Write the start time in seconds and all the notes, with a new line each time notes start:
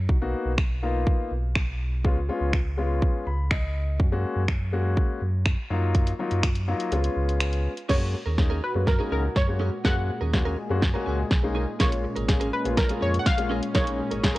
Already playing: F#2
0.09 B1 D#4 F#4, kick
0.22 A#3 B3 D#4 F#4
0.46 B1
0.58 finger snap, kick
0.83 A#3 B3 D#4 F4
1.07 kick
1.31 B1
1.55 finger snap, kick
2.04 C#2 G#3 B3 C#4 F4, kick
2.29 G#3 B3 C#4 F4
2.41 C#2
2.53 finger snap, kick
2.77 G#3 B3 C#4 F4
3.02 kick
3.26 C#2 B5
3.51 D#5, finger snap, kick
3.99 F#2 C#4 F#4, kick
4.12 G#3 A#3 C#4 F#4
4.36 F#2
4.48 finger snap, kick
4.72 G#3 A#3 C#4 F#4
4.97 kick
5.22 F#2
5.46 finger snap, kick
5.70 F#2 F#3 A#3 D#4 F4
5.94 kick, closed hi-hat
6.07 closed hi-hat
6.19 F#3 A#3 D#4 F4
6.31 F#2, closed hi-hat
6.43 finger snap, kick, closed hi-hat
6.55 closed hi-hat
6.68 F#3 A#3 D#4 F4
6.80 closed hi-hat
6.92 C#2 G#3 B3 C#4 F4, closed hi-hat
7.04 closed hi-hat
7.17 C#2
7.29 closed hi-hat
7.40 finger snap, closed hi-hat
7.53 closed hi-hat
7.77 closed hi-hat
7.89 F#2 A#2 G#3 A#3 C#4 F#4 G#4 A#4 C#5, kick, snare, crash
8.02 muted clean electric guitar stroke
8.14 muted clean electric guitar stroke
8.26 D#2 C#4 G#4 A#4
8.38 G#3 A#3 C#4 D#4, muted clean electric guitar stroke, kick, snare
8.50 C#4 G#4 A#4
8.62 B4, muted clean electric guitar stroke
8.75 F#2 G#3 A#3 C#4 F#4, muted clean electric guitar stroke
8.87 A#4, muted clean electric guitar stroke, kick, snare
8.99 G#3 A#3 C#4 D#4 G#4 A#4
9.11 C#2 C#4 G#4 A#4
9.23 muted clean electric guitar stroke
9.35 F#2 C#5, muted clean electric guitar stroke, kick, snare
9.48 G#3 A#3 C#4 F#4, muted clean electric guitar stroke
9.60 C#4 G#4 A#4
9.72 muted clean electric guitar stroke
9.84 F#2 G#3 A#3 C#4 F#4 G#4 A#4 F#5, kick, snare
9.96 muted clean electric guitar stroke
10.09 muted clean electric guitar stroke
10.21 D#2 C#4 G#4 A#4
10.33 G#3 A#3 C#4 F#4, muted clean electric guitar stroke, kick, snare
10.45 C#4 G#4 A#4
10.58 muted clean electric guitar stroke
10.69 F#2 G#3 A#3 C#4 F#4, muted clean electric guitar stroke
10.82 muted clean electric guitar stroke, kick, snare
10.94 G#3 A#3 C#4 F#4 G#4 A#4
11.06 C#2 C#4 G#4 A#4
11.18 muted clean electric guitar stroke
11.30 B1, muted clean electric guitar stroke, kick, snare
11.43 G#3 A#3 C#4 D#4, muted clean electric guitar stroke
11.55 C#4 G#4 A#4
11.67 muted clean electric guitar stroke
11.79 A#1 G#3 A#3 C#4 F4 G#4 A#4 C#5, kick, snare, closed hi-hat
11.91 muted clean electric guitar stroke, closed hi-hat
12.04 muted clean electric guitar stroke
12.16 G#1 C#4 G#4 A#4, closed hi-hat
12.28 G#3 A#3 C#4 G#4, muted clean electric guitar stroke, kick, snare, closed hi-hat
12.40 C#4 G#4 A#4, closed hi-hat
12.52 B4, muted clean electric guitar stroke
12.65 A#1 G#3 A#3 C#4 F4, muted clean electric guitar stroke, closed hi-hat
12.77 A#4, muted clean electric guitar stroke, kick, snare, closed hi-hat
12.89 G#3 A#3 C#4 F4 G#4 A#4, closed hi-hat
13.01 F2 C#4 G#4 A#4 C#5
13.13 muted clean electric guitar stroke, closed hi-hat
13.19 F#5
13.25 A#1 F5, muted clean electric guitar stroke, kick, snare, closed hi-hat
13.38 G#3 A#3 C#4 F4, muted clean electric guitar stroke, closed hi-hat
13.50 C#4 G#4 A#4
13.62 muted clean electric guitar stroke, closed hi-hat
13.75 A#1 G#3 A#3 C#4 D#4 G#4 A#4 C#5, kick, snare, closed hi-hat
13.87 muted clean electric guitar stroke, closed hi-hat
13.99 muted clean electric guitar stroke
14.11 G#1 C#4 G#4 A#4, closed hi-hat
14.23 G#3 A#3 C#4 G#4, muted clean electric guitar stroke, kick, snare, closed hi-hat
14.35 A#4